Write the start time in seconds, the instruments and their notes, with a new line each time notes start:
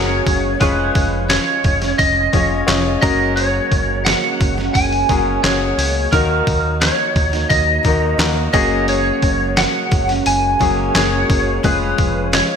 Already playing: picked electric bass F#1, tonewheel organ C#3 F#3 G#3 A#3 F#4, steel-string acoustic guitar F#3 A#3 C#4 G#4, grand piano C#4 F#4 G#4 A#4, lead electric guitar C#5
0.26 picked electric bass F#1, kick, open hi-hat
0.60 picked electric bass F1, steel-string acoustic guitar F3 G#3 C#4 G#4, tonewheel organ G#3 C#4 F4, grand piano C#4 F4 G#4 C#5, lead electric guitar B4, kick, open hi-hat
0.95 picked electric bass F1, kick, open hi-hat
1.29 steel-string acoustic guitar F3 G#3 C#4 G#4, lead electric guitar C#5, snare, clap, open hi-hat
1.64 picked electric bass F1, kick, open hi-hat
1.81 steel-string acoustic guitar G#3 C#4 G#4, snare, open hi-hat
1.98 picked electric bass F1, lead electric guitar D#5, kick, open hi-hat
2.33 picked electric bass F1, steel-string acoustic guitar F3 G#3 C#4 G#4, grand piano C#4 F4 G#4 C#5, kick, open hi-hat
2.67 picked electric bass F1, steel-string acoustic guitar F3 G#3 C#4 G#4, grand piano C#4 F4 G#4 C#5, snare, clap, open hi-hat
3.02 picked electric bass F#1, tonewheel organ C#3 F#3 A#3 F#4, steel-string acoustic guitar F#3 A#3 C#4 G#4, grand piano C#4 F#4 G#4 A#4, lead electric guitar D#5, kick, open hi-hat
3.36 lead electric guitar C#5, open hi-hat
3.72 picked electric bass F#1, kick, open hi-hat
4.05 steel-string acoustic guitar F#3 A#3 C#4 G#4, lead electric guitar F#5, snare, clap, open hi-hat
4.41 picked electric bass F#1, kick, open hi-hat
4.57 steel-string acoustic guitar A#3 C#4 G#4, snare
4.74 picked electric bass F#1, lead electric guitar G#5, kick, open hi-hat
4.92 open hi-hat
5.09 picked electric bass F#1, steel-string acoustic guitar F#3 A#3 C#4 G#4, grand piano C#4 F#4 G#4 A#4, kick, open hi-hat
5.43 picked electric bass F#1, steel-string acoustic guitar F#3 A#3 C#4 G#4, grand piano C#4 F#4 G#4 C#5, lead electric guitar C#5, snare, clap, open hi-hat
5.78 picked electric bass C#2, open hi-hat
6.12 picked electric bass D#2, steel-string acoustic guitar D#3 A#3 D#4 F#4, grand piano D#3 A#3 D#4 F#4 A#4, tonewheel organ A#3 D#4, lead electric guitar A#4, kick, open hi-hat
6.47 picked electric bass D#2, kick, open hi-hat
6.81 steel-string acoustic guitar D#3 A#3 D#4 F#4, lead electric guitar C#5, snare, clap, open hi-hat
7.16 picked electric bass D#2, kick, open hi-hat
7.32 steel-string acoustic guitar A#3 D#4 F#4, snare, open hi-hat
7.49 picked electric bass D#2, lead electric guitar D#5, kick, open hi-hat
7.83 picked electric bass D#2, steel-string acoustic guitar D#3 A#3 D#4 F#4, grand piano A#3 D#4 F#4 A#4, kick, open hi-hat
8.18 picked electric bass D#2, steel-string acoustic guitar D#3 A#3 D#4 F#4, grand piano A#3 D#4 F#4 A#4, snare, clap, open hi-hat
8.53 picked electric bass F#1, tonewheel organ C#3 G#3 F#4, steel-string acoustic guitar F#3 A#3 C#4 G#4, grand piano A#3 C#4 F#4 G#4, lead electric guitar D#5, kick, open hi-hat
8.88 lead electric guitar C#5, open hi-hat
9.22 picked electric bass F#1, kick, open hi-hat
9.56 steel-string acoustic guitar F#3 A#3 C#4 G#4, lead electric guitar F#5, snare, clap, open hi-hat
9.91 picked electric bass F#1, kick, open hi-hat
10.08 steel-string acoustic guitar A#3 C#4 G#4, snare, open hi-hat
10.26 picked electric bass F#1, lead electric guitar G#5, open hi-hat
10.59 picked electric bass F#1, steel-string acoustic guitar F#3 A#3 C#4 G#4, grand piano A#3 C#4 F#4 G#4, kick, open hi-hat
10.94 picked electric bass F#1, steel-string acoustic guitar F#3 A#3 C#4 G#4, grand piano A#3 C#4 F#4 G#4, lead electric guitar C#5, snare, clap, open hi-hat
11.30 picked electric bass F#1, kick, open hi-hat
11.63 picked electric bass F1, steel-string acoustic guitar F3 G#3 C#4 G#4, grand piano G#3 C#4 F4 G#4, tonewheel organ C#4 F4, lead electric guitar B4, kick, open hi-hat
11.98 picked electric bass F1, kick, open hi-hat
12.32 steel-string acoustic guitar F3 G#3 C#4 G#4, lead electric guitar C#5, snare, clap, open hi-hat